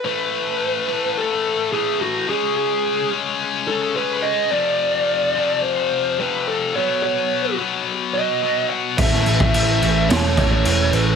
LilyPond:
<<
  \new Staff \with { instrumentName = "Lead electric guitar" } { \time 4/4 \key cis \minor \tempo 4 = 108 b'2 a'4 gis'8 fis'8 | gis'8 gis'4 r4 a'8 b'8 dis''8 | d''2 c''4 b'8 a'8 | cis''8 cis''4 r4 dis''4 fis''8 |
e''4 e''4 cis''8. cis''8. b'8 | }
  \new Staff \with { instrumentName = "Overdriven electric guitar" } { \time 4/4 \key cis \minor r1 | r1 | r1 | r1 |
<a, e a cis' e'>2 <a, e a cis' e'>2 | }
  \new Staff \with { instrumentName = "Distorted electric guitar" } { \clef bass \time 4/4 \key cis \minor <a, e a>4. <a, e a>4. <a, e a>4 | <cis gis cis'>4. <cis gis cis'>4. <cis gis cis'>4 | <f, c f>4. <f, c f>4. <f, c f>4 | <b, fis b>4. <b, fis b>4. <b, fis b>4 |
<a, e a>4. <a, e a>4. <a, e a>4 | }
  \new Staff \with { instrumentName = "Overdriven electric guitar" } { \clef bass \time 4/4 \key cis \minor r1 | r1 | r1 | r1 |
<a, e a>8 <a, e a>8 <a, e a>8 <a, e a>8 <a, e a>8 <a, e a>8 <a, e a>8 <a, e a>8 | }
  \new Staff \with { instrumentName = "Picked electric bass" } { \clef bass \time 4/4 \key cis \minor r1 | r1 | r1 | r1 |
a,,8 a,,8 a,,8 a,,8 e,,8 a,,8 e,,8 a,,8 | }
  \new DrumStaff \with { instrumentName = "Drums" } \drummode { \time 4/4 r4 r4 r4 r4 | r4 r4 r4 r4 | r4 r4 r4 r4 | r4 r4 r4 r4 |
<cymc bd>16 sn16 cymc16 bd16 cymc8 cymc8 <cymc sn>8 <cymc bd>8 cymc8 cymc8 | }
>>